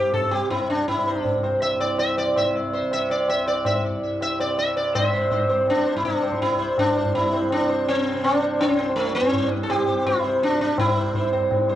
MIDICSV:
0, 0, Header, 1, 4, 480
1, 0, Start_track
1, 0, Tempo, 369914
1, 654, Time_signature, 4, 2, 24, 8
1, 7370, Tempo, 364520
1, 15367, End_track
2, 0, Start_track
2, 0, Title_t, "Sitar"
2, 0, Program_c, 0, 104
2, 0, Note_on_c, 0, 67, 75
2, 170, Note_off_c, 0, 67, 0
2, 175, Note_on_c, 0, 69, 75
2, 404, Note_on_c, 0, 67, 72
2, 422, Note_off_c, 0, 69, 0
2, 647, Note_off_c, 0, 67, 0
2, 653, Note_on_c, 0, 64, 80
2, 900, Note_off_c, 0, 64, 0
2, 905, Note_on_c, 0, 62, 74
2, 1135, Note_off_c, 0, 62, 0
2, 1140, Note_on_c, 0, 64, 72
2, 1394, Note_on_c, 0, 72, 35
2, 1581, Note_off_c, 0, 64, 0
2, 1581, Note_on_c, 0, 62, 72
2, 1610, Note_off_c, 0, 72, 0
2, 1810, Note_off_c, 0, 62, 0
2, 1865, Note_on_c, 0, 72, 36
2, 2086, Note_off_c, 0, 72, 0
2, 2099, Note_on_c, 0, 76, 92
2, 2335, Note_off_c, 0, 76, 0
2, 2340, Note_on_c, 0, 74, 86
2, 2579, Note_off_c, 0, 74, 0
2, 2584, Note_on_c, 0, 76, 98
2, 2823, Note_off_c, 0, 76, 0
2, 2829, Note_on_c, 0, 74, 87
2, 3072, Note_off_c, 0, 74, 0
2, 3078, Note_on_c, 0, 76, 81
2, 3294, Note_off_c, 0, 76, 0
2, 3547, Note_on_c, 0, 72, 38
2, 3768, Note_off_c, 0, 72, 0
2, 3801, Note_on_c, 0, 76, 97
2, 4031, Note_off_c, 0, 76, 0
2, 4037, Note_on_c, 0, 74, 86
2, 4268, Note_off_c, 0, 74, 0
2, 4273, Note_on_c, 0, 76, 92
2, 4502, Note_off_c, 0, 76, 0
2, 4508, Note_on_c, 0, 74, 86
2, 4744, Note_off_c, 0, 74, 0
2, 4750, Note_on_c, 0, 76, 75
2, 4968, Note_off_c, 0, 76, 0
2, 5478, Note_on_c, 0, 76, 99
2, 5709, Note_off_c, 0, 76, 0
2, 5714, Note_on_c, 0, 74, 87
2, 5945, Note_off_c, 0, 74, 0
2, 5951, Note_on_c, 0, 76, 91
2, 6183, Note_off_c, 0, 76, 0
2, 6188, Note_on_c, 0, 74, 76
2, 6421, Note_off_c, 0, 74, 0
2, 6421, Note_on_c, 0, 72, 41
2, 6426, Note_on_c, 0, 76, 91
2, 6640, Note_off_c, 0, 72, 0
2, 6659, Note_on_c, 0, 72, 41
2, 6878, Note_off_c, 0, 72, 0
2, 6898, Note_on_c, 0, 72, 40
2, 7087, Note_off_c, 0, 76, 0
2, 7117, Note_off_c, 0, 72, 0
2, 7133, Note_on_c, 0, 72, 38
2, 7353, Note_off_c, 0, 72, 0
2, 7396, Note_on_c, 0, 62, 88
2, 7612, Note_on_c, 0, 72, 41
2, 7741, Note_off_c, 0, 62, 0
2, 7746, Note_on_c, 0, 64, 77
2, 7836, Note_off_c, 0, 72, 0
2, 7851, Note_off_c, 0, 64, 0
2, 7857, Note_on_c, 0, 62, 85
2, 8085, Note_on_c, 0, 72, 39
2, 8304, Note_off_c, 0, 62, 0
2, 8314, Note_off_c, 0, 72, 0
2, 8344, Note_on_c, 0, 64, 100
2, 8569, Note_on_c, 0, 72, 42
2, 8797, Note_off_c, 0, 72, 0
2, 8829, Note_off_c, 0, 64, 0
2, 8834, Note_on_c, 0, 62, 92
2, 9062, Note_on_c, 0, 72, 39
2, 9275, Note_off_c, 0, 62, 0
2, 9285, Note_off_c, 0, 72, 0
2, 9307, Note_on_c, 0, 64, 93
2, 9539, Note_on_c, 0, 72, 41
2, 9764, Note_off_c, 0, 72, 0
2, 9790, Note_off_c, 0, 64, 0
2, 9796, Note_on_c, 0, 62, 87
2, 10019, Note_on_c, 0, 72, 42
2, 10244, Note_off_c, 0, 72, 0
2, 10273, Note_on_c, 0, 60, 90
2, 10284, Note_off_c, 0, 62, 0
2, 10744, Note_on_c, 0, 62, 98
2, 10763, Note_off_c, 0, 60, 0
2, 10976, Note_on_c, 0, 72, 41
2, 11191, Note_off_c, 0, 62, 0
2, 11203, Note_off_c, 0, 72, 0
2, 11222, Note_on_c, 0, 60, 100
2, 11455, Note_on_c, 0, 72, 42
2, 11679, Note_off_c, 0, 60, 0
2, 11682, Note_off_c, 0, 72, 0
2, 11684, Note_on_c, 0, 57, 92
2, 11930, Note_off_c, 0, 57, 0
2, 11935, Note_on_c, 0, 60, 94
2, 12184, Note_on_c, 0, 72, 39
2, 12385, Note_off_c, 0, 60, 0
2, 12406, Note_off_c, 0, 72, 0
2, 12574, Note_on_c, 0, 69, 80
2, 12658, Note_off_c, 0, 69, 0
2, 12660, Note_on_c, 0, 67, 97
2, 12900, Note_on_c, 0, 72, 39
2, 13123, Note_off_c, 0, 72, 0
2, 13140, Note_off_c, 0, 67, 0
2, 13145, Note_on_c, 0, 64, 101
2, 13375, Note_on_c, 0, 72, 42
2, 13600, Note_off_c, 0, 72, 0
2, 13623, Note_off_c, 0, 64, 0
2, 13628, Note_on_c, 0, 62, 95
2, 13848, Note_off_c, 0, 62, 0
2, 13864, Note_on_c, 0, 62, 92
2, 14100, Note_off_c, 0, 62, 0
2, 14105, Note_on_c, 0, 64, 93
2, 14339, Note_on_c, 0, 72, 38
2, 14559, Note_off_c, 0, 72, 0
2, 14576, Note_on_c, 0, 72, 40
2, 14767, Note_off_c, 0, 64, 0
2, 14789, Note_off_c, 0, 72, 0
2, 14804, Note_on_c, 0, 72, 41
2, 15030, Note_off_c, 0, 72, 0
2, 15289, Note_on_c, 0, 72, 40
2, 15367, Note_off_c, 0, 72, 0
2, 15367, End_track
3, 0, Start_track
3, 0, Title_t, "Tanpura"
3, 0, Program_c, 1, 104
3, 0, Note_on_c, 1, 36, 56
3, 0, Note_on_c, 1, 43, 59
3, 0, Note_on_c, 1, 48, 54
3, 147, Note_off_c, 1, 48, 0
3, 147, Note_on_c, 1, 48, 56
3, 845, Note_off_c, 1, 48, 0
3, 845, Note_on_c, 1, 48, 60
3, 1548, Note_off_c, 1, 36, 0
3, 1553, Note_on_c, 1, 36, 55
3, 2248, Note_off_c, 1, 43, 0
3, 2253, Note_on_c, 1, 43, 56
3, 2945, Note_off_c, 1, 48, 0
3, 2945, Note_on_c, 1, 48, 59
3, 3648, Note_off_c, 1, 48, 0
3, 3648, Note_on_c, 1, 48, 58
3, 4354, Note_off_c, 1, 36, 0
3, 4359, Note_on_c, 1, 36, 61
3, 5038, Note_off_c, 1, 43, 0
3, 5044, Note_on_c, 1, 43, 61
3, 5739, Note_off_c, 1, 48, 0
3, 5739, Note_on_c, 1, 48, 55
3, 6412, Note_off_c, 1, 43, 0
3, 6412, Note_on_c, 1, 43, 63
3, 7105, Note_off_c, 1, 48, 0
3, 7105, Note_on_c, 1, 48, 66
3, 7816, Note_off_c, 1, 48, 0
3, 7816, Note_on_c, 1, 48, 69
3, 8515, Note_off_c, 1, 36, 0
3, 8520, Note_on_c, 1, 36, 71
3, 9223, Note_off_c, 1, 43, 0
3, 9223, Note_on_c, 1, 43, 67
3, 9917, Note_off_c, 1, 48, 0
3, 9917, Note_on_c, 1, 48, 63
3, 10612, Note_off_c, 1, 48, 0
3, 10612, Note_on_c, 1, 48, 69
3, 11302, Note_off_c, 1, 36, 0
3, 11307, Note_on_c, 1, 36, 66
3, 11999, Note_off_c, 1, 43, 0
3, 12004, Note_on_c, 1, 43, 65
3, 12715, Note_off_c, 1, 48, 0
3, 12720, Note_on_c, 1, 48, 63
3, 13399, Note_off_c, 1, 48, 0
3, 13399, Note_on_c, 1, 48, 63
3, 14108, Note_off_c, 1, 36, 0
3, 14113, Note_on_c, 1, 36, 62
3, 14799, Note_off_c, 1, 43, 0
3, 14804, Note_on_c, 1, 43, 68
3, 15367, Note_off_c, 1, 36, 0
3, 15367, Note_off_c, 1, 43, 0
3, 15367, Note_off_c, 1, 48, 0
3, 15367, End_track
4, 0, Start_track
4, 0, Title_t, "Tabla"
4, 168, Note_on_c, 9, 63, 79
4, 168, Note_on_c, 9, 64, 70
4, 298, Note_off_c, 9, 63, 0
4, 298, Note_off_c, 9, 64, 0
4, 409, Note_on_c, 9, 60, 58
4, 538, Note_off_c, 9, 60, 0
4, 661, Note_on_c, 9, 60, 79
4, 661, Note_on_c, 9, 64, 66
4, 791, Note_off_c, 9, 60, 0
4, 791, Note_off_c, 9, 64, 0
4, 1139, Note_on_c, 9, 60, 80
4, 1139, Note_on_c, 9, 64, 67
4, 1269, Note_off_c, 9, 60, 0
4, 1269, Note_off_c, 9, 64, 0
4, 1617, Note_on_c, 9, 63, 76
4, 1617, Note_on_c, 9, 64, 67
4, 1747, Note_off_c, 9, 63, 0
4, 1747, Note_off_c, 9, 64, 0
4, 1858, Note_on_c, 9, 60, 59
4, 1988, Note_off_c, 9, 60, 0
4, 2096, Note_on_c, 9, 60, 77
4, 2226, Note_off_c, 9, 60, 0
4, 2342, Note_on_c, 9, 60, 70
4, 2471, Note_off_c, 9, 60, 0
4, 2576, Note_on_c, 9, 60, 74
4, 2706, Note_off_c, 9, 60, 0
4, 2817, Note_on_c, 9, 60, 72
4, 2947, Note_off_c, 9, 60, 0
4, 3062, Note_on_c, 9, 60, 88
4, 3062, Note_on_c, 9, 64, 83
4, 3191, Note_off_c, 9, 60, 0
4, 3191, Note_off_c, 9, 64, 0
4, 3781, Note_on_c, 9, 60, 71
4, 3911, Note_off_c, 9, 60, 0
4, 4019, Note_on_c, 9, 60, 77
4, 4149, Note_off_c, 9, 60, 0
4, 4257, Note_on_c, 9, 60, 72
4, 4387, Note_off_c, 9, 60, 0
4, 4491, Note_on_c, 9, 60, 76
4, 4621, Note_off_c, 9, 60, 0
4, 4734, Note_on_c, 9, 60, 91
4, 4734, Note_on_c, 9, 64, 79
4, 4863, Note_off_c, 9, 60, 0
4, 4863, Note_off_c, 9, 64, 0
4, 5461, Note_on_c, 9, 60, 76
4, 5590, Note_off_c, 9, 60, 0
4, 5703, Note_on_c, 9, 60, 73
4, 5833, Note_off_c, 9, 60, 0
4, 5939, Note_on_c, 9, 60, 76
4, 6069, Note_off_c, 9, 60, 0
4, 6182, Note_on_c, 9, 60, 68
4, 6312, Note_off_c, 9, 60, 0
4, 6427, Note_on_c, 9, 60, 108
4, 6427, Note_on_c, 9, 64, 95
4, 6556, Note_off_c, 9, 60, 0
4, 6556, Note_off_c, 9, 64, 0
4, 6890, Note_on_c, 9, 63, 86
4, 6890, Note_on_c, 9, 64, 78
4, 7020, Note_off_c, 9, 63, 0
4, 7020, Note_off_c, 9, 64, 0
4, 7131, Note_on_c, 9, 60, 67
4, 7260, Note_off_c, 9, 60, 0
4, 7368, Note_on_c, 9, 60, 84
4, 7368, Note_on_c, 9, 64, 72
4, 7499, Note_off_c, 9, 60, 0
4, 7499, Note_off_c, 9, 64, 0
4, 7608, Note_on_c, 9, 62, 62
4, 7739, Note_on_c, 9, 64, 62
4, 7740, Note_off_c, 9, 62, 0
4, 7850, Note_off_c, 9, 64, 0
4, 7850, Note_on_c, 9, 63, 86
4, 7850, Note_on_c, 9, 64, 78
4, 7981, Note_off_c, 9, 63, 0
4, 7981, Note_off_c, 9, 64, 0
4, 8096, Note_on_c, 9, 60, 65
4, 8213, Note_on_c, 9, 37, 67
4, 8228, Note_off_c, 9, 60, 0
4, 8338, Note_on_c, 9, 60, 82
4, 8338, Note_on_c, 9, 64, 73
4, 8345, Note_off_c, 9, 37, 0
4, 8470, Note_off_c, 9, 60, 0
4, 8470, Note_off_c, 9, 64, 0
4, 8817, Note_on_c, 9, 60, 85
4, 8817, Note_on_c, 9, 64, 80
4, 8949, Note_off_c, 9, 60, 0
4, 8949, Note_off_c, 9, 64, 0
4, 9064, Note_on_c, 9, 62, 71
4, 9177, Note_on_c, 9, 64, 59
4, 9195, Note_off_c, 9, 62, 0
4, 9301, Note_off_c, 9, 64, 0
4, 9301, Note_on_c, 9, 63, 87
4, 9301, Note_on_c, 9, 64, 77
4, 9433, Note_off_c, 9, 63, 0
4, 9433, Note_off_c, 9, 64, 0
4, 9548, Note_on_c, 9, 60, 66
4, 9658, Note_on_c, 9, 37, 67
4, 9680, Note_off_c, 9, 60, 0
4, 9775, Note_on_c, 9, 60, 86
4, 9790, Note_off_c, 9, 37, 0
4, 9907, Note_off_c, 9, 60, 0
4, 10257, Note_on_c, 9, 63, 89
4, 10389, Note_off_c, 9, 63, 0
4, 10500, Note_on_c, 9, 60, 63
4, 10631, Note_off_c, 9, 60, 0
4, 10738, Note_on_c, 9, 60, 89
4, 10870, Note_off_c, 9, 60, 0
4, 11216, Note_on_c, 9, 60, 85
4, 11348, Note_off_c, 9, 60, 0
4, 11466, Note_on_c, 9, 60, 64
4, 11597, Note_off_c, 9, 60, 0
4, 11698, Note_on_c, 9, 63, 88
4, 11830, Note_off_c, 9, 63, 0
4, 12174, Note_on_c, 9, 63, 89
4, 12174, Note_on_c, 9, 64, 73
4, 12306, Note_off_c, 9, 63, 0
4, 12306, Note_off_c, 9, 64, 0
4, 12658, Note_on_c, 9, 60, 84
4, 12658, Note_on_c, 9, 64, 77
4, 12790, Note_off_c, 9, 60, 0
4, 12790, Note_off_c, 9, 64, 0
4, 12898, Note_on_c, 9, 64, 60
4, 13030, Note_off_c, 9, 64, 0
4, 13140, Note_on_c, 9, 60, 90
4, 13140, Note_on_c, 9, 64, 78
4, 13271, Note_off_c, 9, 60, 0
4, 13271, Note_off_c, 9, 64, 0
4, 13382, Note_on_c, 9, 62, 65
4, 13514, Note_off_c, 9, 62, 0
4, 13619, Note_on_c, 9, 62, 86
4, 13733, Note_off_c, 9, 62, 0
4, 13733, Note_on_c, 9, 62, 68
4, 13847, Note_on_c, 9, 37, 65
4, 13865, Note_off_c, 9, 62, 0
4, 13966, Note_on_c, 9, 62, 63
4, 13978, Note_off_c, 9, 37, 0
4, 14086, Note_on_c, 9, 60, 110
4, 14086, Note_on_c, 9, 64, 99
4, 14098, Note_off_c, 9, 62, 0
4, 14217, Note_off_c, 9, 60, 0
4, 14217, Note_off_c, 9, 64, 0
4, 14560, Note_on_c, 9, 63, 86
4, 14560, Note_on_c, 9, 64, 75
4, 14691, Note_off_c, 9, 63, 0
4, 14691, Note_off_c, 9, 64, 0
4, 14808, Note_on_c, 9, 60, 69
4, 14940, Note_off_c, 9, 60, 0
4, 15046, Note_on_c, 9, 60, 86
4, 15046, Note_on_c, 9, 64, 83
4, 15177, Note_off_c, 9, 60, 0
4, 15177, Note_off_c, 9, 64, 0
4, 15279, Note_on_c, 9, 62, 69
4, 15367, Note_off_c, 9, 62, 0
4, 15367, End_track
0, 0, End_of_file